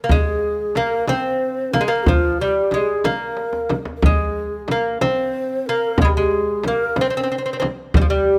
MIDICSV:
0, 0, Header, 1, 5, 480
1, 0, Start_track
1, 0, Tempo, 653595
1, 73, Time_signature, 6, 3, 24, 8
1, 6159, End_track
2, 0, Start_track
2, 0, Title_t, "Ney"
2, 0, Program_c, 0, 77
2, 79, Note_on_c, 0, 68, 76
2, 558, Note_on_c, 0, 70, 76
2, 569, Note_off_c, 0, 68, 0
2, 794, Note_off_c, 0, 70, 0
2, 798, Note_on_c, 0, 72, 80
2, 1272, Note_on_c, 0, 70, 78
2, 1283, Note_off_c, 0, 72, 0
2, 1376, Note_off_c, 0, 70, 0
2, 1380, Note_on_c, 0, 70, 77
2, 1513, Note_on_c, 0, 65, 80
2, 1524, Note_off_c, 0, 70, 0
2, 1770, Note_on_c, 0, 67, 71
2, 1781, Note_off_c, 0, 65, 0
2, 2008, Note_on_c, 0, 68, 74
2, 2019, Note_off_c, 0, 67, 0
2, 2250, Note_on_c, 0, 70, 71
2, 2261, Note_off_c, 0, 68, 0
2, 2783, Note_off_c, 0, 70, 0
2, 2913, Note_on_c, 0, 70, 59
2, 2963, Note_on_c, 0, 68, 74
2, 2974, Note_off_c, 0, 70, 0
2, 3440, Note_off_c, 0, 68, 0
2, 3455, Note_on_c, 0, 70, 67
2, 3686, Note_on_c, 0, 72, 75
2, 3697, Note_off_c, 0, 70, 0
2, 4162, Note_on_c, 0, 70, 79
2, 4173, Note_off_c, 0, 72, 0
2, 4414, Note_on_c, 0, 68, 76
2, 4425, Note_off_c, 0, 70, 0
2, 4508, Note_off_c, 0, 68, 0
2, 4513, Note_on_c, 0, 68, 76
2, 4887, Note_on_c, 0, 70, 77
2, 4898, Note_off_c, 0, 68, 0
2, 5121, Note_on_c, 0, 72, 74
2, 5132, Note_off_c, 0, 70, 0
2, 5658, Note_off_c, 0, 72, 0
2, 5836, Note_on_c, 0, 67, 74
2, 5926, Note_off_c, 0, 67, 0
2, 5930, Note_on_c, 0, 67, 76
2, 6159, Note_off_c, 0, 67, 0
2, 6159, End_track
3, 0, Start_track
3, 0, Title_t, "Lute"
3, 0, Program_c, 1, 24
3, 28, Note_on_c, 1, 58, 65
3, 76, Note_off_c, 1, 58, 0
3, 84, Note_on_c, 1, 56, 95
3, 563, Note_on_c, 1, 58, 86
3, 574, Note_off_c, 1, 56, 0
3, 798, Note_off_c, 1, 58, 0
3, 801, Note_on_c, 1, 60, 97
3, 1271, Note_off_c, 1, 60, 0
3, 1274, Note_on_c, 1, 58, 94
3, 1327, Note_off_c, 1, 58, 0
3, 1327, Note_on_c, 1, 56, 77
3, 1378, Note_off_c, 1, 56, 0
3, 1380, Note_on_c, 1, 58, 94
3, 1521, Note_off_c, 1, 58, 0
3, 1529, Note_on_c, 1, 53, 81
3, 1770, Note_off_c, 1, 53, 0
3, 1773, Note_on_c, 1, 55, 81
3, 2008, Note_off_c, 1, 55, 0
3, 2011, Note_on_c, 1, 56, 77
3, 2239, Note_on_c, 1, 58, 90
3, 2250, Note_off_c, 1, 56, 0
3, 2748, Note_off_c, 1, 58, 0
3, 2980, Note_on_c, 1, 56, 84
3, 3462, Note_off_c, 1, 56, 0
3, 3462, Note_on_c, 1, 58, 82
3, 3680, Note_off_c, 1, 58, 0
3, 3683, Note_on_c, 1, 60, 86
3, 4174, Note_off_c, 1, 60, 0
3, 4179, Note_on_c, 1, 58, 82
3, 4414, Note_off_c, 1, 58, 0
3, 4418, Note_on_c, 1, 56, 84
3, 4440, Note_on_c, 1, 55, 75
3, 4460, Note_off_c, 1, 56, 0
3, 4495, Note_off_c, 1, 55, 0
3, 4531, Note_on_c, 1, 56, 86
3, 4900, Note_off_c, 1, 56, 0
3, 4903, Note_on_c, 1, 58, 80
3, 5136, Note_off_c, 1, 58, 0
3, 5149, Note_on_c, 1, 60, 89
3, 5185, Note_off_c, 1, 60, 0
3, 5217, Note_on_c, 1, 60, 64
3, 5247, Note_off_c, 1, 60, 0
3, 5266, Note_on_c, 1, 60, 70
3, 5299, Note_off_c, 1, 60, 0
3, 5314, Note_on_c, 1, 60, 55
3, 5349, Note_off_c, 1, 60, 0
3, 5373, Note_on_c, 1, 60, 59
3, 5407, Note_off_c, 1, 60, 0
3, 5422, Note_on_c, 1, 60, 52
3, 5459, Note_off_c, 1, 60, 0
3, 5476, Note_on_c, 1, 60, 60
3, 5513, Note_off_c, 1, 60, 0
3, 5531, Note_on_c, 1, 60, 59
3, 5568, Note_off_c, 1, 60, 0
3, 5579, Note_on_c, 1, 60, 70
3, 5619, Note_off_c, 1, 60, 0
3, 5851, Note_on_c, 1, 55, 87
3, 5883, Note_off_c, 1, 55, 0
3, 5886, Note_on_c, 1, 53, 72
3, 5938, Note_off_c, 1, 53, 0
3, 5949, Note_on_c, 1, 55, 81
3, 6159, Note_off_c, 1, 55, 0
3, 6159, End_track
4, 0, Start_track
4, 0, Title_t, "Frame drum"
4, 68, Note_on_c, 9, 64, 74
4, 142, Note_off_c, 9, 64, 0
4, 553, Note_on_c, 9, 64, 53
4, 626, Note_off_c, 9, 64, 0
4, 790, Note_on_c, 9, 64, 65
4, 863, Note_off_c, 9, 64, 0
4, 1275, Note_on_c, 9, 64, 64
4, 1348, Note_off_c, 9, 64, 0
4, 1517, Note_on_c, 9, 64, 77
4, 1590, Note_off_c, 9, 64, 0
4, 1992, Note_on_c, 9, 64, 54
4, 2065, Note_off_c, 9, 64, 0
4, 2235, Note_on_c, 9, 64, 66
4, 2309, Note_off_c, 9, 64, 0
4, 2718, Note_on_c, 9, 64, 66
4, 2791, Note_off_c, 9, 64, 0
4, 2955, Note_on_c, 9, 64, 83
4, 3029, Note_off_c, 9, 64, 0
4, 3438, Note_on_c, 9, 64, 60
4, 3511, Note_off_c, 9, 64, 0
4, 3682, Note_on_c, 9, 64, 65
4, 3755, Note_off_c, 9, 64, 0
4, 4389, Note_on_c, 9, 64, 90
4, 4463, Note_off_c, 9, 64, 0
4, 4879, Note_on_c, 9, 64, 60
4, 4952, Note_off_c, 9, 64, 0
4, 5112, Note_on_c, 9, 64, 63
4, 5186, Note_off_c, 9, 64, 0
4, 5599, Note_on_c, 9, 64, 65
4, 5673, Note_off_c, 9, 64, 0
4, 5833, Note_on_c, 9, 64, 92
4, 5906, Note_off_c, 9, 64, 0
4, 6159, End_track
5, 0, Start_track
5, 0, Title_t, "Tombak"
5, 71, Note_on_c, 9, 64, 75
5, 144, Note_off_c, 9, 64, 0
5, 558, Note_on_c, 9, 63, 63
5, 631, Note_off_c, 9, 63, 0
5, 795, Note_on_c, 9, 63, 65
5, 868, Note_off_c, 9, 63, 0
5, 1280, Note_on_c, 9, 63, 63
5, 1353, Note_off_c, 9, 63, 0
5, 1516, Note_on_c, 9, 64, 87
5, 1589, Note_off_c, 9, 64, 0
5, 1998, Note_on_c, 9, 63, 61
5, 2072, Note_off_c, 9, 63, 0
5, 2238, Note_on_c, 9, 63, 67
5, 2312, Note_off_c, 9, 63, 0
5, 2473, Note_on_c, 9, 63, 52
5, 2546, Note_off_c, 9, 63, 0
5, 2591, Note_on_c, 9, 62, 58
5, 2664, Note_off_c, 9, 62, 0
5, 2713, Note_on_c, 9, 63, 64
5, 2787, Note_off_c, 9, 63, 0
5, 2831, Note_on_c, 9, 62, 80
5, 2904, Note_off_c, 9, 62, 0
5, 2959, Note_on_c, 9, 64, 82
5, 3032, Note_off_c, 9, 64, 0
5, 3436, Note_on_c, 9, 63, 62
5, 3509, Note_off_c, 9, 63, 0
5, 3682, Note_on_c, 9, 63, 67
5, 3755, Note_off_c, 9, 63, 0
5, 4396, Note_on_c, 9, 64, 92
5, 4470, Note_off_c, 9, 64, 0
5, 4873, Note_on_c, 9, 63, 71
5, 4946, Note_off_c, 9, 63, 0
5, 5115, Note_on_c, 9, 63, 75
5, 5188, Note_off_c, 9, 63, 0
5, 5595, Note_on_c, 9, 63, 68
5, 5668, Note_off_c, 9, 63, 0
5, 5833, Note_on_c, 9, 64, 90
5, 5906, Note_off_c, 9, 64, 0
5, 6159, End_track
0, 0, End_of_file